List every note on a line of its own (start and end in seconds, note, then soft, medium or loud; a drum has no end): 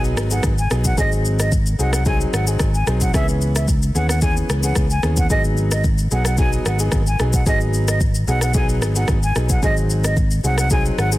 0.00 0.17 B1 medium
0.00 0.27 F#3 medium
0.00 0.27 B3 medium
0.00 0.27 D#4 medium
0.00 0.27 G#4 loud
0.04 shaker soft
0.17 0.40 G#1 medium
0.17 cross-stick loud
0.17 shaker medium
0.30 0.51 F#3 medium
0.30 0.51 B3 medium
0.30 0.51 D#4 medium
0.30 0.51 G#4 medium
0.30 0.43 F#5 medium
0.30 shaker medium
0.43 0.66 G#1 medium
0.43 kick medium
0.43 cross-stick medium
0.43 shaker medium
0.58 0.70 G#5 medium
0.58 shaker soft
0.70 0.93 B1 medium
0.70 0.91 F#3 medium
0.70 0.91 B3 medium
0.70 0.91 D#4 medium
0.70 0.91 G#4 medium
0.70 cross-stick medium
0.70 shaker medium
0.84 0.97 F#5 medium
0.84 kick medium
0.84 shaker medium
0.97 1.75 G#1 loud
0.97 1.47 F#3 medium
0.97 1.48 C4 medium
0.97 1.48 D#4 medium
0.97 1.48 G#4 loud
0.97 1.10 D#5 loud
0.97 kick loud
0.97 shaker medium
1.12 shaker soft
1.25 shaker soft
1.39 1.51 D#5 medium
1.39 cross-stick medium
1.39 shaker loud
1.52 kick medium
1.52 shaker medium
1.66 shaker medium
1.78 2.24 C2 medium
1.78 1.99 F#3 medium
1.78 1.99 C4 medium
1.78 1.99 D#4 medium
1.78 2.00 G#4 medium
1.78 1.91 F#5 medium
1.78 shaker medium
1.93 2.04 F#5 medium
1.93 cross-stick medium
1.93 shaker medium
2.05 2.43 F#3 medium
2.05 2.44 C4 medium
2.05 2.44 D#4 medium
2.05 2.44 G#4 loud
2.05 2.18 G#5 medium
2.05 kick loud
2.05 shaker medium
2.21 shaker soft
2.33 2.56 G#1 medium
2.33 2.45 F#5 medium
2.33 cross-stick loud
2.33 shaker medium
2.46 2.67 F#3 medium
2.46 2.67 C4 medium
2.46 2.67 D#4 medium
2.46 2.67 G#4 medium
2.46 shaker medium
2.59 2.83 G#1 medium
2.59 kick medium
2.59 cross-stick medium
2.59 shaker medium
2.74 2.85 G#5 medium
2.74 shaker soft
2.86 3.10 B1 medium
2.86 3.07 F#3 medium
2.86 3.07 C4 medium
2.86 3.07 D#4 medium
2.86 3.08 G#4 medium
2.86 cross-stick medium
2.86 shaker soft
3.01 3.12 F#5 medium
3.01 kick medium
3.01 shaker medium
3.13 3.91 C#2 loud
3.13 3.64 E3 medium
3.13 3.64 B3 medium
3.13 3.64 C#4 medium
3.13 3.64 G#4 loud
3.13 3.26 E5 loud
3.13 kick loud
3.13 cross-stick medium
3.13 shaker medium
3.28 shaker soft
3.41 shaker soft
3.56 3.67 E5 medium
3.56 cross-stick medium
3.56 shaker loud
3.68 kick medium
3.68 shaker medium
3.82 shaker medium
3.95 4.40 D#2 medium
3.95 4.15 E3 medium
3.95 4.16 B3 medium
3.95 4.16 C#4 medium
3.95 4.16 G#4 medium
3.95 4.07 F#5 medium
3.95 shaker medium
4.09 4.20 F#5 medium
4.09 cross-stick medium
4.09 shaker medium
4.22 4.60 E3 medium
4.22 4.60 B3 medium
4.22 4.60 C#4 medium
4.22 4.60 G#4 loud
4.22 4.34 G#5 medium
4.22 kick loud
4.22 shaker medium
4.37 shaker soft
4.49 4.72 C#2 medium
4.49 cross-stick loud
4.49 shaker medium
4.63 4.83 E3 medium
4.63 4.83 B3 medium
4.63 4.83 C#4 medium
4.63 4.83 G#4 medium
4.63 4.75 F#5 medium
4.63 shaker medium
4.75 4.99 C#2 medium
4.75 kick medium
4.75 cross-stick medium
4.75 shaker medium
4.90 5.02 G#5 medium
4.90 shaker soft
5.03 5.26 D#2 medium
5.03 5.24 E3 medium
5.03 5.24 B3 medium
5.03 5.24 C#4 medium
5.03 5.24 G#4 medium
5.03 cross-stick medium
5.03 shaker soft
5.17 5.29 F#5 medium
5.17 kick medium
5.17 shaker medium
5.30 6.07 G#1 loud
5.30 5.80 F#3 medium
5.30 5.80 B3 medium
5.30 5.80 D#4 medium
5.30 5.80 G#4 loud
5.30 5.43 D#5 loud
5.30 kick loud
5.30 shaker medium
5.44 shaker soft
5.57 shaker medium
5.71 5.83 D#5 medium
5.71 cross-stick medium
5.71 shaker loud
5.84 kick loud
5.84 shaker medium
5.98 shaker medium
6.11 6.57 B1 medium
6.11 6.32 F#3 medium
6.11 6.32 B3 medium
6.11 6.32 D#4 medium
6.11 6.32 G#4 medium
6.11 6.24 F#5 medium
6.11 shaker medium
6.25 6.37 F#5 medium
6.25 cross-stick medium
6.25 shaker medium
6.37 6.76 F#3 medium
6.37 6.76 B3 medium
6.37 6.76 D#4 medium
6.37 6.76 G#4 loud
6.37 6.51 G#5 medium
6.37 kick loud
6.37 shaker medium
6.53 shaker soft
6.65 6.88 G#1 medium
6.65 6.78 F#5 medium
6.65 cross-stick loud
6.65 shaker medium
6.79 6.99 F#3 medium
6.79 6.99 B3 medium
6.79 7.00 D#4 medium
6.79 7.00 G#4 medium
6.79 shaker medium
6.92 7.15 G#1 medium
6.92 kick medium
6.92 cross-stick medium
6.92 shaker medium
7.07 7.18 G#5 medium
7.07 shaker soft
7.19 7.46 B1 medium
7.19 7.40 F#3 medium
7.19 7.40 B3 medium
7.19 7.40 D#4 medium
7.19 7.40 G#4 medium
7.19 cross-stick medium
7.19 shaker medium
7.33 7.45 F#5 medium
7.33 kick medium
7.33 shaker medium
7.46 8.24 G#1 loud
7.46 7.96 F#3 medium
7.46 7.96 B3 medium
7.46 7.97 D#4 medium
7.46 7.97 G#4 loud
7.46 7.59 D#5 loud
7.46 kick loud
7.46 shaker medium
7.61 shaker soft
7.74 shaker medium
7.88 7.99 D#5 medium
7.88 cross-stick medium
7.88 shaker loud
8.00 kick medium
8.00 shaker medium
8.15 shaker medium
8.27 8.82 B1 medium
8.27 8.48 F#3 medium
8.27 8.48 B3 medium
8.27 8.48 D#4 medium
8.27 8.48 G#4 medium
8.27 8.40 F#5 medium
8.27 shaker medium
8.41 8.53 F#5 medium
8.41 cross-stick medium
8.41 shaker medium
8.54 8.92 F#3 medium
8.54 8.92 B3 medium
8.54 8.92 D#4 medium
8.54 8.92 G#4 loud
8.54 8.67 G#5 medium
8.54 kick loud
8.54 shaker medium
8.69 shaker soft
8.82 9.04 G#1 medium
8.82 cross-stick medium
8.82 shaker medium
8.95 9.15 F#3 medium
8.95 9.16 B3 medium
8.95 9.16 D#4 medium
8.95 9.16 G#4 medium
8.95 9.07 F#5 medium
8.95 shaker medium
9.08 9.31 G#1 medium
9.08 kick medium
9.08 cross-stick medium
9.08 shaker medium
9.23 9.34 G#5 medium
9.23 shaker soft
9.35 9.59 B1 medium
9.35 9.56 F#3 medium
9.35 9.56 B3 medium
9.35 9.56 D#4 medium
9.35 9.56 G#4 medium
9.35 cross-stick medium
9.35 shaker soft
9.49 9.61 F#5 medium
9.49 kick medium
9.49 shaker loud
9.62 10.40 G#1 loud
9.62 10.12 F#3 medium
9.62 10.13 C4 medium
9.62 10.13 D#4 medium
9.62 10.13 G#4 loud
9.62 9.75 D#5 loud
9.62 kick loud
9.62 shaker medium
9.77 shaker soft
9.90 shaker medium
10.04 10.15 D#5 medium
10.04 cross-stick medium
10.04 shaker loud
10.17 kick loud
10.17 shaker medium
10.31 shaker medium
10.43 10.89 C2 medium
10.43 10.64 F#3 medium
10.43 10.64 C4 medium
10.43 10.64 D#4 medium
10.43 10.64 G#4 medium
10.43 10.56 F#5 medium
10.43 shaker medium
10.58 10.69 F#5 medium
10.58 cross-stick medium
10.58 shaker medium
10.70 11.08 F#3 loud
10.70 11.08 C4 medium
10.70 11.09 D#4 medium
10.70 11.09 G#4 loud
10.70 10.83 G#5 medium
10.70 kick loud
10.70 shaker medium
10.85 shaker soft
10.98 11.18 G#1 medium
10.98 11.10 F#5 medium
10.98 cross-stick medium
10.98 shaker medium
11.12 11.18 F#3 medium
11.12 11.18 C4 medium
11.12 11.18 D#4 medium
11.12 11.18 G#4 medium
11.12 shaker medium